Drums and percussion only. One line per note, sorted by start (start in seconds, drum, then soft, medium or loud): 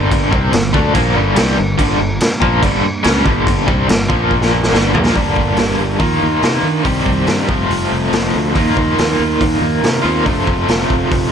0.12 kick loud
0.12 crash medium
0.33 kick loud
0.53 snare loud
0.53 crash medium
0.74 kick loud
0.95 kick loud
0.95 crash medium
1.36 snare loud
1.36 crash medium
1.79 kick loud
1.79 crash medium
2.21 snare loud
2.21 crash medium
2.42 kick loud
2.63 kick loud
2.63 crash medium
3.04 snare loud
3.04 crash medium
3.26 kick loud
3.47 kick loud
3.47 crash medium
3.68 kick loud
3.89 snare loud
3.89 crash medium
4.10 kick loud
4.31 kick medium
4.42 snare medium
4.63 snare medium
4.74 snare medium
4.95 floor tom medium
5.06 snare medium
5.15 kick loud
5.15 open hi-hat soft
5.36 kick medium
5.57 snare loud
5.57 open hi-hat medium
5.99 kick medium
5.99 open hi-hat soft
6.42 snare medium
6.42 open hi-hat soft
6.85 kick medium
6.85 open hi-hat soft
7.06 kick medium
7.27 snare loud
7.27 open hi-hat soft
7.49 kick loud
7.70 open hi-hat medium
8.13 snare loud
8.13 open hi-hat medium
8.55 kick loud
8.55 open hi-hat medium
8.77 kick medium
8.98 snare loud
8.98 open hi-hat medium
9.41 kick loud
9.41 open hi-hat medium
9.84 snare loud
9.84 open hi-hat soft
10.26 kick loud
10.26 open hi-hat soft
10.47 kick medium
10.68 snare loud
10.68 open hi-hat medium
10.90 kick medium
11.12 kick loud
11.12 open hi-hat soft